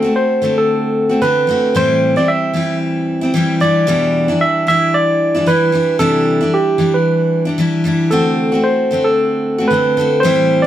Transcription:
0.00 0.42 F#4 medium
0.00 0.12 A4 medium
0.05 0.42 A3 soft
0.05 0.43 C4 medium
0.16 0.54 C5 medium
0.42 1.10 D3 medium
0.42 1.12 A3 medium
0.42 1.11 C4 medium
0.42 1.08 F#4 medium
0.58 1.25 A4 medium
1.09 1.21 A3 soft
1.09 1.22 C4 medium
1.09 1.22 F#4 medium
1.22 1.46 D3 medium
1.22 1.47 A3 medium
1.22 1.48 C4 medium
1.22 1.49 F#4 medium
1.22 1.77 B4 loud
1.47 1.74 D3 medium
1.47 1.75 A3 medium
1.47 1.75 C4 medium
1.47 1.76 F#4 medium
1.75 2.16 A2 medium
1.75 2.17 E3 medium
1.75 2.17 G3 medium
1.75 2.16 C4 medium
1.75 2.15 E4 medium
1.75 2.14 C5 loud
2.16 2.53 G3 soft
2.16 2.55 C4 medium
2.16 2.55 E4 medium
2.16 2.29 D5 loud
2.28 2.78 E5 loud
2.54 3.33 E3 medium
2.54 3.24 G3 medium
2.54 3.22 C4 medium
2.54 3.21 E4 medium
3.21 3.34 G3 medium
3.21 3.35 C4 medium
3.21 3.34 E4 medium
3.34 3.59 E3 medium
3.34 3.61 G3 medium
3.34 3.62 C4 medium
3.34 3.62 E4 medium
3.60 3.87 E3 medium
3.60 3.87 G3 medium
3.60 3.88 D4 medium
3.60 3.88 E4 medium
3.60 4.43 D5 loud
3.87 4.28 E2 medium
3.87 4.28 B2 medium
3.87 4.29 E3 medium
3.87 4.29 G3 medium
3.87 4.28 D4 medium
3.87 4.27 E4 loud
4.28 4.66 E3 medium
4.28 4.67 G3 soft
4.28 4.67 D4 medium
4.28 4.67 E4 medium
4.41 4.67 E5 loud
4.67 5.38 E3 medium
4.67 5.36 G3 medium
4.67 5.35 D4 medium
4.67 5.34 E4 medium
4.67 4.95 E5 loud
4.94 5.48 D5 loud
5.35 5.45 E3 soft
5.35 5.47 G3 medium
5.35 5.47 D4 medium
5.35 5.47 E4 medium
5.46 5.71 E3 medium
5.46 5.72 G3 medium
5.46 5.73 D4 medium
5.46 5.74 E4 medium
5.46 5.96 B4 loud
5.72 5.98 E3 medium
5.72 5.99 G3 medium
5.72 5.99 D4 medium
5.72 6.00 E4 medium
5.99 6.40 C3 medium
5.99 6.41 E3 medium
5.99 6.41 G3 medium
5.99 6.41 D4 medium
5.99 6.39 E4 medium
5.99 6.54 A4 medium
6.41 6.78 G3 soft
6.41 6.79 D4 medium
6.41 6.79 E4 medium
6.54 6.95 G4 medium
6.78 7.46 E3 medium
6.78 7.47 G3 medium
6.78 7.46 D4 medium
6.78 7.44 E4 medium
6.94 7.43 B4 medium
7.45 7.58 G3 soft
7.45 7.59 D4 soft
7.45 7.58 E4 medium
7.58 7.83 E3 medium
7.58 7.84 G3 medium
7.58 7.85 D4 medium
7.58 7.86 E4 medium
7.84 8.11 E3 medium
7.84 8.12 G3 medium
7.84 8.12 D4 medium
7.84 8.13 E4 medium
8.11 8.52 D3 medium
8.11 8.53 A3 medium
8.11 8.52 C4 medium
8.11 8.51 F#4 medium
8.11 8.65 A4 medium
8.52 8.91 A3 soft
8.52 8.91 C4 soft
8.52 8.91 F#4 medium
8.64 9.06 C5 medium
8.91 9.58 D3 medium
8.91 9.61 A3 medium
8.91 9.60 C4 medium
8.91 9.57 F#4 medium
9.04 9.72 A4 medium
9.58 9.70 A3 soft
9.58 9.71 C4 medium
9.58 9.70 F#4 medium
9.68 9.96 D3 medium
9.68 9.97 A3 medium
9.68 10.23 B4 loud
9.73 9.98 C4 medium
9.73 9.98 F#4 medium
9.97 10.23 D3 medium
9.97 10.24 A3 medium
9.97 10.24 C4 medium
9.97 10.25 F#4 medium
10.20 10.64 A2 medium
10.20 10.64 C5 loud
10.24 10.65 E3 medium
10.24 10.65 G3 medium
10.24 10.64 C4 medium
10.24 10.63 E4 medium
10.62 10.67 D5 medium

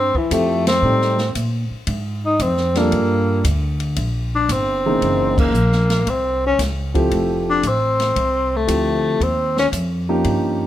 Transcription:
0.00 0.12 G2 medium
0.00 0.18 C4 medium
0.15 0.35 E3 medium
0.15 muted upright bass stroke soft
0.15 kick soft
0.30 0.82 F2 medium
0.30 0.63 F3 medium
0.30 0.63 A3 medium
0.30 0.67 A3 medium
0.30 0.63 C4 medium
0.30 0.63 E4 medium
0.30 0.64 G4 medium
0.30 kick soft
0.30 hi-hat pedal medium
0.30 ride medium
0.67 1.32 C4 medium
0.67 snare medium
0.67 ride medium
0.82 1.33 A2 medium
0.82 1.16 G3 medium
0.82 1.16 A3 medium
0.82 1.16 C4 medium
0.82 1.17 D#4 medium
0.82 1.17 G4 medium
1.01 snare soft
1.18 snare soft
1.35 1.69 A#2 medium
1.35 kick soft
1.35 hi-hat pedal medium
1.35 ride medium
1.70 muted upright bass stroke soft
1.87 2.38 G#2 medium
1.87 kick soft
1.87 ride medium
2.26 2.43 D#4 medium
2.39 2.91 F2 medium
2.39 2.79 C4 medium
2.39 kick soft
2.39 hi-hat pedal medium
2.39 ride medium
2.57 snare soft
2.75 3.41 G3 medium
2.75 3.42 A#3 medium
2.75 3.45 A#3 medium
2.75 3.42 D4 medium
2.75 3.42 F4 medium
2.75 3.42 A4 medium
2.75 snare soft
2.75 ride soft
2.91 3.43 G2 medium
2.91 kick soft
2.91 ride medium
3.44 3.95 D2 medium
3.44 kick soft
3.44 hi-hat pedal medium
3.44 ride medium
3.80 ride soft
3.96 4.48 A#1 medium
3.96 kick soft
3.96 ride medium
4.35 4.54 D4 medium
4.49 5.00 G1 medium
4.49 5.39 C4 medium
4.49 kick soft
4.49 hi-hat pedal medium
4.49 ride medium
4.86 5.51 C#3 medium
4.86 5.51 E3 medium
4.86 5.51 A#3 medium
4.86 5.51 D#4 medium
4.86 5.51 G#4 medium
5.02 5.52 F#1 medium
5.02 kick soft
5.02 ride medium
5.38 6.11 A#3 medium
5.38 kick medium
5.38 crash medium
5.52 6.04 A#1 medium
5.52 hi-hat pedal soft
5.72 snare soft
5.90 snare soft
5.90 ride medium
6.07 6.57 C2 medium
6.07 6.44 C4 medium
6.07 kick soft
6.07 ride medium
6.46 6.60 C#4 medium
6.59 7.09 C#2 medium
6.59 kick soft
6.59 snare soft
6.59 hi-hat pedal medium
6.59 ride medium
6.94 7.60 F3 medium
6.94 7.60 A3 medium
6.94 7.60 C4 medium
6.94 7.60 E4 medium
6.94 7.60 G4 medium
6.94 kick medium
6.94 ride soft
7.11 7.62 F1 medium
7.11 kick soft
7.11 ride medium
7.50 7.70 D4 medium
7.63 8.14 A1 medium
7.63 kick soft
7.63 hi-hat pedal medium
7.63 ride medium
7.68 8.58 C4 medium
8.00 snare soft
8.00 ride soft
8.16 8.66 C2 medium
8.16 kick soft
8.16 ride medium
8.56 9.24 A3 medium
8.67 9.19 D2 medium
8.67 9.20 F3 medium
8.67 9.20 A3 soft
8.67 9.20 C4 medium
8.67 9.20 E4 medium
8.67 9.20 G4 medium
8.67 kick soft
8.67 hi-hat pedal medium
8.67 ride medium
9.20 9.71 D#2 medium
9.20 9.58 C4 medium
9.20 kick soft
9.20 ride medium
9.57 9.68 C#4 medium
9.57 snare soft
9.72 10.23 F2 medium
9.72 kick soft
9.72 hi-hat pedal medium
9.72 ride medium
10.09 10.67 F3 medium
10.09 10.67 A#3 medium
10.09 10.67 C#4 medium
10.09 10.67 D#4 medium
10.09 10.67 G4 medium
10.24 10.67 G2 medium
10.24 kick soft
10.24 ride medium

